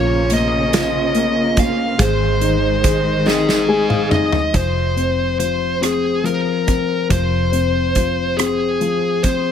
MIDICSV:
0, 0, Header, 1, 7, 480
1, 0, Start_track
1, 0, Tempo, 842697
1, 1134, Time_signature, 6, 3, 24, 8
1, 1616, Tempo, 854701
1, 5368, End_track
2, 0, Start_track
2, 0, Title_t, "Lead electric guitar"
2, 0, Program_c, 0, 29
2, 0, Note_on_c, 0, 73, 79
2, 167, Note_off_c, 0, 73, 0
2, 192, Note_on_c, 0, 75, 79
2, 908, Note_on_c, 0, 77, 84
2, 924, Note_off_c, 0, 75, 0
2, 1148, Note_off_c, 0, 77, 0
2, 1148, Note_on_c, 0, 72, 83
2, 1859, Note_on_c, 0, 68, 85
2, 2313, Note_off_c, 0, 68, 0
2, 2317, Note_off_c, 0, 72, 0
2, 2333, Note_on_c, 0, 75, 78
2, 2580, Note_off_c, 0, 75, 0
2, 2582, Note_on_c, 0, 72, 64
2, 3037, Note_off_c, 0, 72, 0
2, 3053, Note_on_c, 0, 72, 54
2, 3278, Note_off_c, 0, 72, 0
2, 3297, Note_on_c, 0, 68, 71
2, 3534, Note_off_c, 0, 68, 0
2, 3536, Note_on_c, 0, 70, 64
2, 3993, Note_off_c, 0, 70, 0
2, 4020, Note_on_c, 0, 72, 80
2, 4722, Note_on_c, 0, 68, 73
2, 4758, Note_off_c, 0, 72, 0
2, 5206, Note_on_c, 0, 72, 71
2, 5222, Note_off_c, 0, 68, 0
2, 5368, Note_off_c, 0, 72, 0
2, 5368, End_track
3, 0, Start_track
3, 0, Title_t, "Grand piano"
3, 0, Program_c, 1, 0
3, 0, Control_c, 1, 64, 127
3, 0, Note_on_c, 1, 58, 68
3, 0, Note_on_c, 1, 65, 68
3, 166, Note_off_c, 1, 58, 0
3, 174, Note_on_c, 1, 58, 53
3, 412, Note_off_c, 1, 65, 0
3, 420, Note_on_c, 1, 65, 68
3, 643, Note_off_c, 1, 58, 0
3, 652, Note_on_c, 1, 58, 64
3, 887, Note_off_c, 1, 65, 0
3, 896, Note_on_c, 1, 65, 54
3, 1118, Note_off_c, 1, 58, 0
3, 1128, Note_off_c, 1, 65, 0
3, 1130, Note_on_c, 1, 56, 70
3, 1142, Control_c, 1, 64, 0
3, 1243, Control_c, 1, 64, 127
3, 1374, Note_on_c, 1, 63, 53
3, 1613, Note_on_c, 1, 68, 54
3, 1845, Note_off_c, 1, 63, 0
3, 1853, Note_on_c, 1, 63, 66
3, 2083, Note_off_c, 1, 56, 0
3, 2092, Note_on_c, 1, 56, 63
3, 2093, Note_on_c, 1, 80, 68
3, 2205, Note_off_c, 1, 80, 0
3, 2208, Note_on_c, 1, 77, 57
3, 2318, Note_off_c, 1, 63, 0
3, 2322, Note_off_c, 1, 77, 0
3, 2327, Note_on_c, 1, 63, 53
3, 2327, Note_on_c, 1, 75, 60
3, 2550, Note_off_c, 1, 68, 0
3, 2554, Note_off_c, 1, 75, 0
3, 2558, Note_off_c, 1, 56, 0
3, 2563, Note_off_c, 1, 63, 0
3, 2567, Note_on_c, 1, 53, 44
3, 2581, Control_c, 1, 64, 0
3, 2683, Control_c, 1, 64, 127
3, 2810, Note_on_c, 1, 60, 47
3, 3041, Note_off_c, 1, 53, 0
3, 3050, Note_on_c, 1, 53, 46
3, 3277, Note_off_c, 1, 60, 0
3, 3286, Note_on_c, 1, 60, 47
3, 3516, Note_off_c, 1, 53, 0
3, 3525, Note_on_c, 1, 53, 48
3, 3759, Note_off_c, 1, 60, 0
3, 3767, Note_on_c, 1, 60, 43
3, 3997, Note_off_c, 1, 53, 0
3, 4006, Note_on_c, 1, 53, 49
3, 4239, Note_off_c, 1, 60, 0
3, 4247, Note_on_c, 1, 60, 50
3, 4482, Note_off_c, 1, 53, 0
3, 4491, Note_on_c, 1, 53, 43
3, 4722, Note_off_c, 1, 60, 0
3, 4730, Note_on_c, 1, 60, 51
3, 4961, Note_off_c, 1, 53, 0
3, 4969, Note_on_c, 1, 53, 50
3, 5197, Note_off_c, 1, 60, 0
3, 5206, Note_on_c, 1, 60, 45
3, 5368, Note_off_c, 1, 53, 0
3, 5368, Note_off_c, 1, 60, 0
3, 5368, End_track
4, 0, Start_track
4, 0, Title_t, "Steel-string acoustic guitar"
4, 0, Program_c, 2, 25
4, 0, Note_on_c, 2, 46, 78
4, 0, Note_on_c, 2, 53, 82
4, 0, Note_on_c, 2, 58, 72
4, 0, Note_on_c, 2, 61, 85
4, 0, Note_on_c, 2, 65, 96
4, 167, Note_off_c, 2, 58, 0
4, 173, Note_off_c, 2, 46, 0
4, 173, Note_off_c, 2, 61, 0
4, 174, Note_off_c, 2, 53, 0
4, 174, Note_on_c, 2, 58, 64
4, 180, Note_off_c, 2, 65, 0
4, 180, Note_on_c, 2, 61, 68
4, 186, Note_on_c, 2, 65, 64
4, 192, Note_on_c, 2, 72, 80
4, 407, Note_off_c, 2, 72, 0
4, 410, Note_off_c, 2, 61, 0
4, 410, Note_off_c, 2, 65, 0
4, 414, Note_off_c, 2, 58, 0
4, 414, Note_on_c, 2, 72, 69
4, 417, Note_on_c, 2, 61, 67
4, 417, Note_on_c, 2, 65, 78
4, 422, Note_on_c, 2, 58, 68
4, 424, Note_on_c, 2, 53, 72
4, 426, Note_on_c, 2, 46, 58
4, 886, Note_off_c, 2, 72, 0
4, 888, Note_on_c, 2, 72, 53
4, 890, Note_off_c, 2, 65, 0
4, 896, Note_off_c, 2, 61, 0
4, 897, Note_on_c, 2, 65, 53
4, 898, Note_off_c, 2, 58, 0
4, 899, Note_off_c, 2, 53, 0
4, 900, Note_off_c, 2, 46, 0
4, 906, Note_on_c, 2, 61, 47
4, 908, Note_on_c, 2, 58, 43
4, 1131, Note_off_c, 2, 72, 0
4, 1133, Note_on_c, 2, 44, 75
4, 1135, Note_off_c, 2, 65, 0
4, 1136, Note_off_c, 2, 58, 0
4, 1137, Note_on_c, 2, 51, 74
4, 1139, Note_on_c, 2, 56, 80
4, 1140, Note_off_c, 2, 61, 0
4, 1144, Note_on_c, 2, 60, 70
4, 1145, Note_on_c, 2, 63, 75
4, 1148, Note_on_c, 2, 72, 78
4, 1611, Note_off_c, 2, 56, 0
4, 1613, Note_on_c, 2, 56, 59
4, 1615, Note_off_c, 2, 44, 0
4, 1617, Note_off_c, 2, 51, 0
4, 1618, Note_off_c, 2, 60, 0
4, 1618, Note_off_c, 2, 63, 0
4, 1621, Note_on_c, 2, 60, 65
4, 1625, Note_on_c, 2, 63, 75
4, 1629, Note_off_c, 2, 72, 0
4, 1631, Note_on_c, 2, 72, 68
4, 1846, Note_off_c, 2, 72, 0
4, 1850, Note_off_c, 2, 63, 0
4, 1852, Note_off_c, 2, 60, 0
4, 1852, Note_on_c, 2, 72, 81
4, 1853, Note_off_c, 2, 56, 0
4, 1857, Note_on_c, 2, 63, 71
4, 1858, Note_on_c, 2, 60, 73
4, 1860, Note_on_c, 2, 56, 67
4, 1863, Note_on_c, 2, 51, 65
4, 1864, Note_on_c, 2, 44, 65
4, 2326, Note_off_c, 2, 72, 0
4, 2329, Note_on_c, 2, 72, 53
4, 2330, Note_off_c, 2, 63, 0
4, 2336, Note_on_c, 2, 63, 52
4, 2337, Note_off_c, 2, 51, 0
4, 2337, Note_off_c, 2, 60, 0
4, 2338, Note_off_c, 2, 44, 0
4, 2340, Note_on_c, 2, 60, 46
4, 2344, Note_off_c, 2, 56, 0
4, 2346, Note_on_c, 2, 56, 48
4, 2571, Note_off_c, 2, 72, 0
4, 2575, Note_off_c, 2, 63, 0
4, 2577, Note_off_c, 2, 60, 0
4, 2580, Note_off_c, 2, 56, 0
4, 5368, End_track
5, 0, Start_track
5, 0, Title_t, "String section"
5, 0, Program_c, 3, 48
5, 0, Note_on_c, 3, 49, 83
5, 0, Note_on_c, 3, 58, 65
5, 1111, Note_off_c, 3, 58, 0
5, 1122, Note_off_c, 3, 49, 0
5, 1128, Note_on_c, 3, 51, 79
5, 1131, Note_on_c, 3, 56, 67
5, 2556, Note_off_c, 3, 51, 0
5, 2558, Note_off_c, 3, 56, 0
5, 5368, End_track
6, 0, Start_track
6, 0, Title_t, "Fingered electric bass"
6, 0, Program_c, 4, 33
6, 0, Note_on_c, 4, 34, 110
6, 1112, Note_off_c, 4, 34, 0
6, 1134, Note_on_c, 4, 32, 98
6, 2551, Note_off_c, 4, 32, 0
6, 2572, Note_on_c, 4, 29, 69
6, 3993, Note_off_c, 4, 29, 0
6, 4012, Note_on_c, 4, 29, 82
6, 5368, Note_off_c, 4, 29, 0
6, 5368, End_track
7, 0, Start_track
7, 0, Title_t, "Drums"
7, 170, Note_on_c, 9, 42, 75
7, 227, Note_off_c, 9, 42, 0
7, 418, Note_on_c, 9, 42, 97
7, 422, Note_on_c, 9, 38, 101
7, 474, Note_off_c, 9, 42, 0
7, 479, Note_off_c, 9, 38, 0
7, 653, Note_on_c, 9, 42, 47
7, 710, Note_off_c, 9, 42, 0
7, 893, Note_on_c, 9, 42, 59
7, 896, Note_on_c, 9, 36, 81
7, 950, Note_off_c, 9, 42, 0
7, 953, Note_off_c, 9, 36, 0
7, 1135, Note_on_c, 9, 36, 96
7, 1137, Note_on_c, 9, 42, 84
7, 1192, Note_off_c, 9, 36, 0
7, 1194, Note_off_c, 9, 42, 0
7, 1375, Note_on_c, 9, 42, 51
7, 1432, Note_off_c, 9, 42, 0
7, 1618, Note_on_c, 9, 36, 93
7, 1618, Note_on_c, 9, 42, 79
7, 1674, Note_off_c, 9, 36, 0
7, 1674, Note_off_c, 9, 42, 0
7, 1865, Note_on_c, 9, 38, 59
7, 1921, Note_off_c, 9, 38, 0
7, 1981, Note_on_c, 9, 38, 59
7, 2038, Note_off_c, 9, 38, 0
7, 2213, Note_on_c, 9, 47, 76
7, 2270, Note_off_c, 9, 47, 0
7, 2333, Note_on_c, 9, 45, 97
7, 2389, Note_off_c, 9, 45, 0
7, 2452, Note_on_c, 9, 43, 92
7, 2508, Note_off_c, 9, 43, 0
7, 2573, Note_on_c, 9, 36, 80
7, 2573, Note_on_c, 9, 42, 66
7, 2629, Note_off_c, 9, 42, 0
7, 2630, Note_off_c, 9, 36, 0
7, 2816, Note_on_c, 9, 42, 42
7, 2872, Note_off_c, 9, 42, 0
7, 3055, Note_on_c, 9, 42, 58
7, 3111, Note_off_c, 9, 42, 0
7, 3296, Note_on_c, 9, 42, 73
7, 3300, Note_on_c, 9, 37, 72
7, 3352, Note_off_c, 9, 42, 0
7, 3357, Note_off_c, 9, 37, 0
7, 3535, Note_on_c, 9, 42, 37
7, 3592, Note_off_c, 9, 42, 0
7, 3772, Note_on_c, 9, 42, 51
7, 3774, Note_on_c, 9, 36, 68
7, 3829, Note_off_c, 9, 42, 0
7, 3830, Note_off_c, 9, 36, 0
7, 4012, Note_on_c, 9, 42, 68
7, 4013, Note_on_c, 9, 36, 79
7, 4068, Note_off_c, 9, 42, 0
7, 4069, Note_off_c, 9, 36, 0
7, 4251, Note_on_c, 9, 42, 45
7, 4308, Note_off_c, 9, 42, 0
7, 4489, Note_on_c, 9, 42, 61
7, 4492, Note_on_c, 9, 36, 63
7, 4545, Note_off_c, 9, 42, 0
7, 4548, Note_off_c, 9, 36, 0
7, 4734, Note_on_c, 9, 42, 75
7, 4738, Note_on_c, 9, 37, 87
7, 4790, Note_off_c, 9, 42, 0
7, 4794, Note_off_c, 9, 37, 0
7, 4971, Note_on_c, 9, 42, 35
7, 5027, Note_off_c, 9, 42, 0
7, 5209, Note_on_c, 9, 42, 52
7, 5212, Note_on_c, 9, 36, 71
7, 5266, Note_off_c, 9, 42, 0
7, 5268, Note_off_c, 9, 36, 0
7, 5368, End_track
0, 0, End_of_file